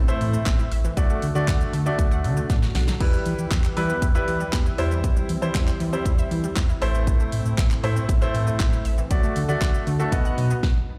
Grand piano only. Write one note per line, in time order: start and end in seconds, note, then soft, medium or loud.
0.08 0.69 A3 medium
0.08 0.70 E4 medium
0.08 0.70 C5 medium
0.97 1.23 A3 medium
0.97 1.23 F#4 medium
0.97 1.23 D5 loud
1.35 1.70 A3 medium
1.35 1.70 F#4 medium
1.35 1.70 D5 loud
1.86 2.56 A3 medium
1.86 2.56 F#4 medium
1.86 2.56 D5 medium
3.00 3.53 G3 medium
3.00 3.53 E4 medium
3.00 3.53 B4 medium
3.76 4.03 G3 medium
3.76 4.03 E4 medium
3.76 4.03 B4 loud
4.15 4.76 G3 medium
4.15 4.76 E4 medium
4.15 4.76 B4 loud
4.78 5.29 G3 medium
4.78 5.29 E4 medium
4.78 5.29 C5 loud
5.42 5.77 G3 medium
5.42 5.77 E4 medium
5.42 5.77 C5 loud
5.93 6.63 G3 medium
5.93 6.63 E4 medium
5.93 6.63 C5 medium
6.81 7.63 A3 medium
6.81 7.63 E4 medium
6.81 7.63 C5 loud
7.83 8.10 A3 medium
7.83 8.10 E4 medium
7.83 8.10 C5 loud
8.22 8.83 A3 medium
8.22 8.83 E4 medium
8.22 8.83 C5 loud
9.11 9.37 A3 medium
9.11 9.37 F#4 medium
9.11 9.37 D5 loud
9.48 9.84 A3 medium
9.48 9.84 F#4 medium
9.48 9.84 D5 loud
9.99 10.12 A3 medium
9.99 10.11 F#4 medium
9.99 10.12 A4 medium
10.12 10.53 B3 medium
10.12 10.53 F#4 medium
10.12 10.53 D#5 loud